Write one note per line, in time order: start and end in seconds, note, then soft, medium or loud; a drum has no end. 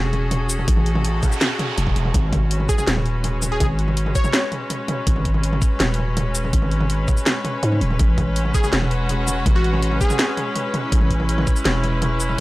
0.00 0.67 E1 medium
0.00 2.14 C#4 medium
0.00 7.99 F#4 medium
0.00 2.14 G#4 loud
0.00 2.14 A4 medium
0.13 closed hi-hat soft
0.13 mid tom medium
0.31 closed hi-hat medium
0.31 mid tom medium
0.49 closed hi-hat soft
0.49 shaker medium
0.59 mid tom medium
0.68 1.22 A1 medium
0.68 kick loud
0.68 closed hi-hat medium
0.68 noise sweep medium
0.77 mid tom medium
0.86 closed hi-hat soft
0.95 mid tom medium
1.05 closed hi-hat medium
1.23 kick loud
1.23 closed hi-hat soft
1.23 mid tom medium
1.23 shaker soft
1.32 shaker soft
1.41 snare loud
1.41 closed hi-hat medium
1.41 mid tom medium
1.59 closed hi-hat soft
1.59 mid tom medium
1.78 1.95 E1 medium
1.78 closed hi-hat medium
1.87 kick medium
1.87 mid tom medium
1.96 2.13 E1 medium
1.96 closed hi-hat soft
2.05 mid tom medium
2.14 2.68 G#1 loud
2.14 12.40 G#3 medium
2.14 kick loud
2.14 closed hi-hat medium
2.14 mid tom medium
2.24 12.40 C#4 medium
2.32 kick medium
2.32 closed hi-hat soft
2.32 mid tom medium
2.51 12.40 B4 medium
2.51 closed hi-hat medium
2.60 mid tom medium
2.69 2.75 G#4 medium
2.69 kick loud
2.69 closed hi-hat soft
2.69 shaker soft
2.78 2.84 G#4 medium
2.78 mid tom medium
2.78 shaker soft
2.87 3.59 D#1 medium
2.87 snare loud
2.87 closed hi-hat medium
2.97 mid tom medium
3.06 closed hi-hat soft
3.24 closed hi-hat medium
3.24 mid tom medium
3.42 closed hi-hat soft
3.42 mid tom medium
3.42 shaker medium
3.52 3.57 G#4 medium
3.60 4.14 G#1 medium
3.60 3.67 G#4 medium
3.60 kick loud
3.60 closed hi-hat medium
3.60 mid tom medium
3.79 closed hi-hat soft
3.88 mid tom medium
3.97 closed hi-hat medium
4.06 mid tom medium
4.15 4.52 C#5 loud
4.15 kick loud
4.15 closed hi-hat soft
4.15 shaker soft
4.24 mid tom medium
4.24 shaker soft
4.33 snare loud
4.33 closed hi-hat medium
4.52 closed hi-hat soft
4.52 mid tom medium
4.70 closed hi-hat medium
4.70 mid tom medium
4.88 closed hi-hat soft
4.88 mid tom medium
5.07 5.61 G#1 loud
5.07 kick loud
5.07 closed hi-hat medium
5.16 mid tom medium
5.25 kick medium
5.25 closed hi-hat soft
5.34 mid tom medium
5.43 closed hi-hat medium
5.53 mid tom medium
5.62 kick loud
5.62 closed hi-hat soft
5.62 shaker soft
5.80 6.52 D#1 medium
5.80 snare loud
5.80 closed hi-hat medium
5.80 mid tom medium
5.94 closed hi-hat soft
5.98 mid tom soft
6.17 closed hi-hat medium
6.17 mid tom medium
6.35 closed hi-hat soft
6.35 shaker medium
6.44 mid tom medium
6.53 7.07 G#1 loud
6.53 kick loud
6.53 closed hi-hat medium
6.62 mid tom medium
6.71 closed hi-hat soft
6.80 mid tom medium
6.90 closed hi-hat medium
7.08 kick loud
7.08 closed hi-hat soft
7.08 mid tom medium
7.08 shaker soft
7.17 shaker soft
7.26 snare loud
7.26 closed hi-hat medium
7.26 mid tom medium
7.45 closed hi-hat soft
7.45 mid tom medium
7.63 7.83 G#2 medium
7.63 closed hi-hat medium
7.72 mid tom soft
7.81 7.98 D#1 medium
7.81 closed hi-hat soft
7.90 mid tom soft
7.99 8.53 A1 medium
7.99 kick loud
7.99 closed hi-hat medium
7.99 mid tom soft
8.18 kick medium
8.18 closed hi-hat soft
8.18 mid tom medium
8.36 10.94 F#4 medium
8.36 closed hi-hat medium
8.45 mid tom soft
8.54 8.60 G#4 medium
8.54 kick loud
8.54 closed hi-hat soft
8.54 shaker soft
8.64 8.70 G#4 medium
8.64 mid tom soft
8.64 shaker soft
8.73 9.45 E1 medium
8.73 snare loud
8.73 closed hi-hat medium
8.82 mid tom medium
8.91 closed hi-hat soft
9.09 closed hi-hat medium
9.09 mid tom soft
9.28 closed hi-hat soft
9.28 mid tom medium
9.28 shaker medium
9.46 10.00 A1 loud
9.46 kick loud
9.46 closed hi-hat medium
9.46 mid tom medium
9.56 9.92 F#4 medium
9.64 closed hi-hat soft
9.73 mid tom medium
9.82 closed hi-hat medium
9.92 mid tom medium
10.01 10.52 G#4 loud
10.01 kick loud
10.01 closed hi-hat soft
10.01 shaker soft
10.10 mid tom medium
10.10 shaker soft
10.19 snare loud
10.19 closed hi-hat medium
10.37 closed hi-hat soft
10.37 mid tom medium
10.56 closed hi-hat medium
10.56 mid tom medium
10.74 closed hi-hat soft
10.74 mid tom medium
10.83 12.40 E4 loud
10.92 11.46 A1 loud
10.92 kick loud
10.92 closed hi-hat medium
11.01 mid tom medium
11.10 kick medium
11.10 closed hi-hat soft
11.20 mid tom medium
11.29 closed hi-hat medium
11.38 mid tom medium
11.47 kick loud
11.47 closed hi-hat soft
11.47 shaker soft
11.56 shaker soft
11.65 12.37 E1 medium
11.65 snare loud
11.65 closed hi-hat medium
11.65 mid tom medium
11.84 closed hi-hat soft
11.84 mid tom medium
12.02 closed hi-hat medium
12.02 mid tom medium
12.20 closed hi-hat soft
12.20 shaker medium
12.29 mid tom medium